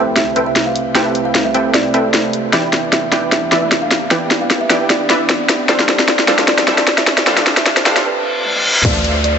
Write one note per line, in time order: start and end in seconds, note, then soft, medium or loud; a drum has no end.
0.00 2.50 C2 medium
0.00 2.50 C3 medium
0.00 0.93 A3 medium
0.00 0.34 C4 medium
0.00 0.94 C4 medium
0.00 0.95 E4 medium
0.00 0.96 G4 medium
0.00 2.50 G4 medium
0.00 0.34 A4 medium
0.00 0.34 B4 medium
0.00 0.97 B4 medium
0.00 2.50 B4 medium
0.00 1.55 C5 medium
0.00 0.11 E5 medium
0.00 0.34 E5 medium
0.00 0.34 G5 medium
0.00 riser medium
0.16 0.38 E5 medium
0.16 snare medium
0.16 closed hi-hat medium
0.36 0.49 C4 medium
0.36 0.49 A4 medium
0.36 0.49 B4 medium
0.36 0.49 E5 medium
0.36 0.49 G5 loud
0.36 closed hi-hat medium
0.46 0.61 E5 medium
0.56 snare medium
0.56 closed hi-hat medium
0.66 0.80 F5 medium
0.76 closed hi-hat medium
0.93 1.51 A3 medium
0.93 1.52 C4 medium
0.93 1.52 C4 loud
0.93 1.52 E4 medium
0.93 1.53 G4 medium
0.93 1.52 A4 medium
0.93 1.52 B4 medium
0.93 1.52 E5 medium
0.93 1.52 G5 loud
0.93 snare medium
0.93 closed hi-hat medium
0.97 1.53 B4 medium
1.15 closed hi-hat medium
1.25 1.39 F5 medium
1.35 snare medium
1.35 closed hi-hat medium
1.45 1.67 E5 medium
1.53 1.65 A3 medium
1.53 1.65 C4 medium
1.53 1.92 C4 medium
1.53 1.65 E4 medium
1.53 1.65 G4 medium
1.53 1.92 A4 medium
1.53 1.92 B4 medium
1.53 1.66 C5 medium
1.53 1.92 E5 medium
1.53 1.92 G5 medium
1.53 closed hi-hat medium
1.74 2.46 D5 medium
1.74 snare medium
1.74 closed hi-hat medium
1.93 2.04 A3 medium
1.93 2.04 C4 medium
1.93 2.07 C4 medium
1.93 2.05 E4 medium
1.93 2.05 G4 medium
1.93 2.07 A4 medium
1.93 2.05 A4 medium
1.93 2.07 B4 medium
1.93 2.07 E5 medium
1.93 2.07 G5 medium
1.93 closed hi-hat medium
2.14 snare medium
2.14 closed hi-hat medium
2.33 closed hi-hat medium
2.51 5.66 E2 medium
2.51 3.10 E3 loud
2.51 5.66 E3 medium
2.51 3.09 B3 medium
2.51 3.10 D4 medium
2.51 5.66 D4 medium
2.51 3.10 E4 medium
2.51 5.66 G4 medium
2.51 3.11 G4 medium
2.51 3.10 B4 medium
2.51 3.11 B4 medium
2.51 3.10 D5 medium
2.51 2.82 E5 medium
2.51 3.10 G5 loud
2.51 snare medium
2.51 closed hi-hat medium
2.73 snare medium
2.73 closed hi-hat medium
2.93 3.07 E5 medium
2.93 snare medium
2.93 closed hi-hat medium
3.11 3.50 E3 medium
3.11 3.22 B3 medium
3.11 3.23 D4 medium
3.11 3.23 E4 medium
3.11 3.50 E4 medium
3.11 3.23 G4 medium
3.11 3.50 B4 medium
3.11 3.50 D5 medium
3.11 3.24 D5 medium
3.11 3.27 E5 medium
3.11 3.50 G5 medium
3.11 snare medium
3.11 closed hi-hat medium
3.32 3.54 E5 medium
3.32 snare medium
3.32 closed hi-hat medium
3.52 3.65 E3 medium
3.52 3.65 E4 medium
3.52 3.65 B4 medium
3.52 3.65 D5 medium
3.52 3.65 E5 medium
3.52 snare medium
3.52 closed hi-hat medium
3.62 3.76 E5 medium
3.71 snare medium
3.71 closed hi-hat medium
3.82 3.96 F5 medium
3.91 snare medium
3.91 open hi-hat medium
4.09 4.68 E3 loud
4.09 4.67 B3 medium
4.09 4.67 D4 medium
4.09 4.68 E4 medium
4.09 4.68 G4 medium
4.09 4.68 B4 medium
4.09 4.68 D5 medium
4.09 4.68 G5 loud
4.09 snare medium
4.09 closed hi-hat medium
4.13 4.69 B4 medium
4.31 snare medium
4.31 closed hi-hat medium
4.41 4.55 F5 medium
4.50 snare medium
4.50 closed hi-hat medium
4.61 4.82 E5 loud
4.69 5.07 E3 medium
4.69 4.80 B3 medium
4.69 4.81 D4 medium
4.69 5.07 E4 medium
4.69 4.81 E4 medium
4.69 4.81 G4 medium
4.69 5.07 B4 medium
4.69 5.07 D5 medium
4.69 4.81 D5 medium
4.69 5.07 G5 medium
4.69 snare medium
4.69 closed hi-hat medium
4.90 5.61 D5 medium
4.90 snare medium
4.90 closed hi-hat medium
5.10 5.22 E3 medium
5.10 5.22 E4 medium
5.10 5.22 B4 medium
5.10 5.22 D5 medium
5.10 5.22 E5 loud
5.10 snare medium
5.10 closed hi-hat medium
5.29 snare medium
5.29 closed hi-hat medium
5.49 snare medium
5.49 open hi-hat loud
5.67 8.03 G2 medium
5.67 8.03 F3 medium
5.67 6.26 G3 loud
5.67 6.25 C4 medium
5.67 8.03 C4 medium
5.67 6.25 D4 medium
5.67 6.26 D4 medium
5.67 6.26 F4 medium
5.67 8.03 G4 medium
5.67 6.26 G4 medium
5.67 6.26 A4 medium
5.67 6.27 A4 medium
5.67 6.26 C5 medium
5.67 5.98 D5 medium
5.67 6.26 F5 loud
5.67 snare medium
5.67 closed hi-hat medium
5.79 snare medium
5.89 snare medium
5.89 closed hi-hat medium
5.99 snare medium
6.08 6.23 D5 medium
6.08 snare loud
6.08 closed hi-hat medium
6.19 snare medium
6.27 6.65 G3 medium
6.27 6.38 C4 medium
6.27 6.39 D4 medium
6.27 6.65 D4 medium
6.27 6.39 F4 medium
6.27 6.39 G4 medium
6.27 6.65 A4 medium
6.27 6.39 B4 medium
6.27 6.65 C5 medium
6.27 6.43 D5 medium
6.27 6.65 F5 loud
6.27 snare loud
6.27 closed hi-hat medium
6.38 snare medium
6.48 6.70 D5 loud
6.48 snare medium
6.48 closed hi-hat medium
6.58 snare medium
6.68 6.80 G3 medium
6.68 6.80 D4 medium
6.68 6.80 A4 medium
6.68 6.80 C5 medium
6.68 6.80 E5 loud
6.68 snare medium
6.68 closed hi-hat medium
6.78 6.92 D5 medium
6.78 snare medium
6.87 snare loud
6.87 closed hi-hat medium
6.98 7.12 E5 medium
6.98 snare medium
7.07 snare loud
7.07 open hi-hat medium
7.17 snare medium
7.25 7.84 G3 loud
7.25 7.83 C4 medium
7.25 7.83 D4 medium
7.25 7.84 D4 medium
7.25 7.84 F4 medium
7.25 7.84 G4 medium
7.25 7.84 A4 medium
7.25 7.84 C5 medium
7.25 7.84 F5 loud
7.25 snare loud
7.25 closed hi-hat medium
7.29 7.85 A4 loud
7.37 snare medium
7.47 snare loud
7.47 closed hi-hat medium
7.57 7.71 E5 medium
7.57 snare medium
7.66 snare loud
7.66 closed hi-hat medium
7.77 7.98 C5 loud
7.77 snare medium
7.85 8.06 G3 medium
7.85 7.96 C4 medium
7.85 7.96 D4 medium
7.85 8.06 D4 medium
7.85 7.97 F4 medium
7.85 7.97 G4 medium
7.85 8.06 A4 medium
7.85 7.97 B4 loud
7.85 8.06 C5 medium
7.85 8.06 F5 medium
7.85 snare loud
7.85 closed hi-hat medium
7.96 snare medium
8.06 8.77 B4 loud
8.06 reverse cymbal medium
8.45 high tom medium
8.56 high tom medium
8.65 mid tom medium
8.75 mid tom medium
8.85 9.39 D2 loud
8.85 9.39 D4 loud
8.85 9.39 A4 medium
8.85 9.39 C5 medium
8.85 9.14 D5 medium
8.85 9.39 E5 loud
8.85 9.39 F5 loud
8.85 kick loud
8.85 closed hi-hat medium
8.85 crash loud
8.85 downlifter medium
9.04 closed hi-hat medium
9.24 9.39 D5 medium
9.24 closed hi-hat medium